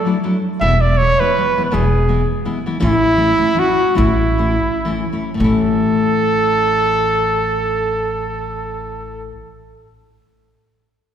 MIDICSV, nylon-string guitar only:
0, 0, Header, 1, 2, 480
1, 0, Start_track
1, 0, Key_signature, 3, "major"
1, 0, Tempo, 371747
1, 785, Time_signature, 3, 2, 24, 8
1, 4129, Tempo, 403226
1, 5569, Tempo, 470958
1, 6049, Tempo, 522193
1, 6529, Tempo, 528634
1, 11749, End_track
2, 0, Start_track
2, 0, Title_t, "Nylon-string guitar"
2, 0, Program_c, 0, 24
2, 64, Note_on_c, 0, 54, 47
2, 79, Note_on_c, 0, 57, 43
2, 87, Note_on_c, 0, 64, 57
2, 88, Note_on_c, 0, 62, 50
2, 202, Note_off_c, 0, 54, 0
2, 209, Note_off_c, 0, 57, 0
2, 213, Note_off_c, 0, 64, 0
2, 214, Note_off_c, 0, 62, 0
2, 303, Note_on_c, 0, 54, 63
2, 309, Note_on_c, 0, 57, 52
2, 311, Note_on_c, 0, 62, 48
2, 314, Note_on_c, 0, 64, 61
2, 460, Note_off_c, 0, 54, 0
2, 463, Note_off_c, 0, 57, 0
2, 464, Note_off_c, 0, 62, 0
2, 465, Note_off_c, 0, 64, 0
2, 787, Note_on_c, 0, 40, 79
2, 799, Note_on_c, 0, 52, 64
2, 801, Note_on_c, 0, 56, 76
2, 802, Note_on_c, 0, 47, 58
2, 802, Note_on_c, 0, 59, 81
2, 802, Note_on_c, 0, 64, 76
2, 945, Note_off_c, 0, 40, 0
2, 951, Note_off_c, 0, 52, 0
2, 952, Note_off_c, 0, 47, 0
2, 952, Note_off_c, 0, 56, 0
2, 952, Note_off_c, 0, 59, 0
2, 952, Note_off_c, 0, 64, 0
2, 1288, Note_on_c, 0, 52, 51
2, 1288, Note_on_c, 0, 56, 48
2, 1298, Note_on_c, 0, 59, 46
2, 1309, Note_on_c, 0, 64, 49
2, 1436, Note_off_c, 0, 52, 0
2, 1436, Note_off_c, 0, 56, 0
2, 1441, Note_off_c, 0, 59, 0
2, 1446, Note_off_c, 0, 64, 0
2, 1551, Note_on_c, 0, 56, 44
2, 1552, Note_on_c, 0, 52, 47
2, 1561, Note_on_c, 0, 59, 53
2, 1562, Note_on_c, 0, 64, 55
2, 1673, Note_off_c, 0, 56, 0
2, 1674, Note_off_c, 0, 52, 0
2, 1678, Note_off_c, 0, 59, 0
2, 1679, Note_off_c, 0, 64, 0
2, 1779, Note_on_c, 0, 52, 51
2, 1788, Note_on_c, 0, 56, 56
2, 1788, Note_on_c, 0, 59, 49
2, 1793, Note_on_c, 0, 64, 45
2, 1922, Note_off_c, 0, 52, 0
2, 1926, Note_off_c, 0, 56, 0
2, 1926, Note_off_c, 0, 59, 0
2, 1929, Note_off_c, 0, 64, 0
2, 2024, Note_on_c, 0, 56, 45
2, 2031, Note_on_c, 0, 52, 55
2, 2042, Note_on_c, 0, 59, 57
2, 2042, Note_on_c, 0, 64, 59
2, 2148, Note_off_c, 0, 56, 0
2, 2152, Note_off_c, 0, 52, 0
2, 2158, Note_off_c, 0, 59, 0
2, 2158, Note_off_c, 0, 64, 0
2, 2204, Note_on_c, 0, 40, 63
2, 2214, Note_on_c, 0, 47, 75
2, 2216, Note_on_c, 0, 59, 88
2, 2220, Note_on_c, 0, 52, 64
2, 2225, Note_on_c, 0, 56, 67
2, 2228, Note_on_c, 0, 64, 72
2, 2371, Note_off_c, 0, 40, 0
2, 2376, Note_off_c, 0, 47, 0
2, 2377, Note_off_c, 0, 59, 0
2, 2379, Note_off_c, 0, 52, 0
2, 2382, Note_off_c, 0, 56, 0
2, 2383, Note_off_c, 0, 64, 0
2, 2694, Note_on_c, 0, 52, 64
2, 2704, Note_on_c, 0, 59, 53
2, 2709, Note_on_c, 0, 56, 47
2, 2716, Note_on_c, 0, 64, 59
2, 2855, Note_off_c, 0, 52, 0
2, 2859, Note_off_c, 0, 59, 0
2, 2862, Note_off_c, 0, 56, 0
2, 2866, Note_off_c, 0, 64, 0
2, 3167, Note_on_c, 0, 56, 67
2, 3170, Note_on_c, 0, 52, 64
2, 3177, Note_on_c, 0, 59, 64
2, 3177, Note_on_c, 0, 64, 64
2, 3328, Note_off_c, 0, 56, 0
2, 3329, Note_off_c, 0, 52, 0
2, 3333, Note_off_c, 0, 59, 0
2, 3333, Note_off_c, 0, 64, 0
2, 3436, Note_on_c, 0, 52, 59
2, 3441, Note_on_c, 0, 56, 49
2, 3445, Note_on_c, 0, 59, 54
2, 3448, Note_on_c, 0, 64, 56
2, 3566, Note_off_c, 0, 52, 0
2, 3568, Note_off_c, 0, 56, 0
2, 3570, Note_off_c, 0, 59, 0
2, 3572, Note_off_c, 0, 64, 0
2, 3613, Note_on_c, 0, 45, 73
2, 3616, Note_on_c, 0, 57, 59
2, 3620, Note_on_c, 0, 52, 88
2, 3620, Note_on_c, 0, 61, 83
2, 3622, Note_on_c, 0, 64, 91
2, 3787, Note_off_c, 0, 45, 0
2, 3788, Note_off_c, 0, 57, 0
2, 3790, Note_off_c, 0, 52, 0
2, 3790, Note_off_c, 0, 61, 0
2, 3791, Note_off_c, 0, 64, 0
2, 4083, Note_on_c, 0, 52, 52
2, 4094, Note_on_c, 0, 57, 60
2, 4110, Note_on_c, 0, 61, 59
2, 4114, Note_on_c, 0, 64, 56
2, 4254, Note_off_c, 0, 52, 0
2, 4259, Note_off_c, 0, 57, 0
2, 4267, Note_off_c, 0, 61, 0
2, 4269, Note_off_c, 0, 64, 0
2, 4332, Note_on_c, 0, 52, 58
2, 4344, Note_on_c, 0, 57, 58
2, 4346, Note_on_c, 0, 64, 61
2, 4350, Note_on_c, 0, 61, 68
2, 4478, Note_off_c, 0, 52, 0
2, 4485, Note_off_c, 0, 57, 0
2, 4486, Note_off_c, 0, 64, 0
2, 4487, Note_off_c, 0, 61, 0
2, 4546, Note_on_c, 0, 52, 60
2, 4557, Note_on_c, 0, 57, 56
2, 4568, Note_on_c, 0, 61, 66
2, 4570, Note_on_c, 0, 64, 61
2, 4717, Note_off_c, 0, 52, 0
2, 4723, Note_off_c, 0, 57, 0
2, 4728, Note_off_c, 0, 61, 0
2, 4730, Note_off_c, 0, 64, 0
2, 5021, Note_on_c, 0, 45, 68
2, 5026, Note_on_c, 0, 52, 75
2, 5027, Note_on_c, 0, 57, 68
2, 5029, Note_on_c, 0, 61, 72
2, 5040, Note_on_c, 0, 64, 76
2, 5204, Note_off_c, 0, 45, 0
2, 5206, Note_off_c, 0, 52, 0
2, 5207, Note_off_c, 0, 57, 0
2, 5208, Note_off_c, 0, 61, 0
2, 5213, Note_off_c, 0, 64, 0
2, 5531, Note_on_c, 0, 52, 47
2, 5543, Note_on_c, 0, 57, 58
2, 5545, Note_on_c, 0, 64, 55
2, 5546, Note_on_c, 0, 61, 50
2, 5703, Note_off_c, 0, 52, 0
2, 5707, Note_off_c, 0, 57, 0
2, 5708, Note_off_c, 0, 64, 0
2, 5709, Note_off_c, 0, 61, 0
2, 6019, Note_on_c, 0, 52, 68
2, 6025, Note_on_c, 0, 57, 55
2, 6035, Note_on_c, 0, 61, 58
2, 6045, Note_on_c, 0, 64, 57
2, 6188, Note_off_c, 0, 52, 0
2, 6191, Note_off_c, 0, 57, 0
2, 6195, Note_off_c, 0, 61, 0
2, 6200, Note_off_c, 0, 64, 0
2, 6274, Note_on_c, 0, 57, 52
2, 6276, Note_on_c, 0, 52, 49
2, 6282, Note_on_c, 0, 61, 45
2, 6283, Note_on_c, 0, 64, 52
2, 6423, Note_off_c, 0, 57, 0
2, 6424, Note_off_c, 0, 52, 0
2, 6427, Note_off_c, 0, 61, 0
2, 6427, Note_off_c, 0, 64, 0
2, 6476, Note_on_c, 0, 45, 75
2, 6505, Note_on_c, 0, 52, 60
2, 6526, Note_on_c, 0, 57, 75
2, 6544, Note_on_c, 0, 61, 76
2, 6567, Note_on_c, 0, 64, 84
2, 10057, Note_off_c, 0, 45, 0
2, 10086, Note_off_c, 0, 52, 0
2, 10107, Note_off_c, 0, 57, 0
2, 10124, Note_off_c, 0, 61, 0
2, 10148, Note_off_c, 0, 64, 0
2, 11749, End_track
0, 0, End_of_file